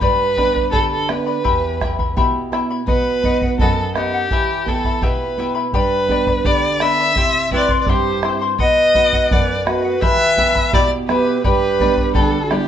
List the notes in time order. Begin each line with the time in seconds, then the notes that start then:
0.01 G2 G4 B4 D5 G5 B5, bombo low
0.37 B3 D4 G4 B4 D5 G5 B5, bombo low
0.54 B4 D5 B5, bombo low
0.72 D3 G4 A4 B4 D5 G5 B5, bombo low
0.92 A4
1.08 B3 D4 G4 B4 D5 G5 B5, bombo rim
1.26 B4 D5 B5
1.44 E2 E4 G4 E5 G5 B5, bombo low
1.80 B3 E4 G4 E5 G5 B5, bombo rim, bombo low
1.99 E4 E5 B5, bombo low
2.17 B2 E4 G4 E5 G5 B5, bombo low
2.52 B3 E4 G4 E5 G5 B5, bombo rim
2.71 E4 E5 B5
2.87 B2 B4 D#5 F#5, bombo low
3.23 B3 D#4 F#4 B4 D#5 F#5, bombo low
3.42 D#5 F#5, bombo low
3.59 F#2 A4 B4 D#5 F#5, bombo low
3.95 B3 D#4 G4 B4 D#5 F#5, bombo rim
4.14 D#5 F#5
4.30 E3 E4 G4 E5 G5 B5, bombo low
4.66 B3 E4 G4 A4 E5 G5 B5, bombo low
4.84 E4 E5 B5, bombo low
5.02 B2 E4 G4 B4 E5 G5 B5, bombo low
5.38 B3 E4 G4 E5 G5 B5
5.55 E4 E5 B5
5.73 G2 G4 B4 D5 G5 B5, bombo low
6.08 B3 D4 G4 B4 D5 G5 B5, bombo low
6.27 B4 D5 B5, bombo low
6.45 D3 G4 B4 D5 G5 B5, bombo low
6.80 B3 D4 G4 B4 D5 E5 G5 B5, bombo rim
7.00 B4 D5 B5
7.16 C3 E4 G4 E5 G5 C6, bombo low
7.51 C4 E4 G4 B4 D5 E5 G5 C6, bombo low
7.69 E4 E5 C6, bombo low
7.80 B4 D5
7.87 G2 E4 G4 C5 E5 G5 C6, bombo low
8.23 C4 E4 G4 E5 G5 C6, bombo rim
8.42 E4 E5 C6
8.59 B2 B4 D#5 F#5, bombo low
8.95 B3 D#4 F#4 B4 D#5 F#5, bombo low
9.13 D#5 F#5, bombo low
9.31 F#2 B4 D5 F#5, bombo low
9.66 B3 D#4 F#4 B4 D#5 F#5, bombo rim
9.84 D#5 F#5
10.01 E3 E4 G4 B4 E5 G5 B5, bombo low
10.37 B3 E4 G4 E5 G5 B5, bombo low
10.55 E4 E5 B5, bombo low
10.73 B2 E4 G4 D5 E5 G5 B5, bombo low
11.08 B3 E4 G4 A4 B4 E5 G5 B5, bombo rim
11.14 G4
11.26 E4 E5 B5
11.44 G2 G4 B4 D5 G5 B5, bombo low
11.80 G3 B3 D4 B4 D5 G5 B5, bombo low
11.97 B4 D5 B5, bombo low
12.14 D3 D#4 G4 A4 B4 D5 G5 B5, bombo low
12.20 D4
12.44 F#4 A4
12.50 G3 B3 D4 F#4 G4 B4 D5 G5 B5, bombo rim
12.54 E4